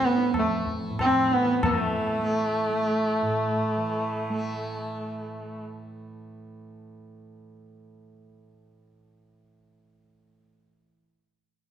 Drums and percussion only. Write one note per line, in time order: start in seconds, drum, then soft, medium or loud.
0.02 tabla ke medium
0.18 tabla te medium
0.34 tabla na medium
0.34 tabla ge medium
0.66 tabla ge medium
0.99 tabla na medium
0.99 tabla ge medium
1.32 tabla te medium
1.63 tabla na loud
1.63 tabla ge medium